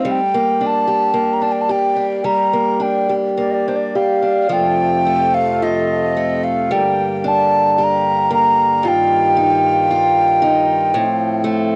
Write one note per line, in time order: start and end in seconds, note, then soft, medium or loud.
0.00 0.18 A3 soft
0.00 0.19 C4 soft
0.00 0.19 D#4 soft
0.00 0.13 F5 medium
0.05 2.23 G3 medium
0.11 0.68 G5 medium
0.34 1.12 A#3 soft
0.61 1.40 D4 soft
0.66 1.35 A5 medium
0.87 1.68 G4 soft
1.14 2.52 A#3 soft
1.33 1.44 A#5 medium
1.42 1.95 D4 soft
1.42 1.53 A5 medium
1.52 1.63 G5 medium
1.61 1.73 A5 medium
1.69 3.08 G4 soft
1.69 2.27 G5 medium
1.96 2.79 D4 soft
2.24 4.49 G3 medium
2.24 2.84 A#5 medium
2.53 3.36 A#3 soft
2.80 3.66 D4 soft
2.80 3.14 G5 medium
3.09 3.94 G4 soft
3.37 4.62 A#3 soft
3.37 3.53 D5 medium
3.51 3.70 D5 medium
3.51 3.56 D#5 soft
3.68 4.21 D4 soft
3.68 3.78 C5 soft
3.76 3.97 D5 medium
3.95 4.49 G4 soft
3.95 4.54 F5 medium
4.22 4.62 D4 soft
4.49 6.69 F2 medium
4.49 6.69 C3 medium
4.49 6.70 F3 soft
4.49 6.69 A3 medium
4.49 5.61 F4 soft
4.49 5.36 G5 medium
5.07 6.16 A3 soft
5.34 5.65 F5 medium
5.62 6.82 F4 soft
5.62 6.45 D#5 medium
6.17 6.82 A3 soft
6.44 6.74 F5 medium
6.71 8.82 G2 medium
6.71 8.82 D3 soft
6.71 9.94 G3 medium
6.71 8.82 A#3 medium
6.71 7.29 G5 medium
7.24 8.94 D4 medium
7.24 7.85 A5 medium
7.78 8.84 G4 soft
7.83 8.33 A#5 medium
8.30 10.97 A#3 soft
8.30 8.89 A#5 medium
8.83 10.93 G2 medium
8.83 10.92 G2 medium
8.83 10.92 D#3 medium
8.83 10.92 F4 medium
8.83 9.90 F4 soft
8.88 11.73 G5 medium
9.37 10.41 D#4 soft
9.91 11.76 F4 soft
10.42 11.04 D#4 medium
10.94 11.76 A2 medium
10.94 11.76 F3 medium
10.94 11.76 C4 medium
11.44 11.76 A3 medium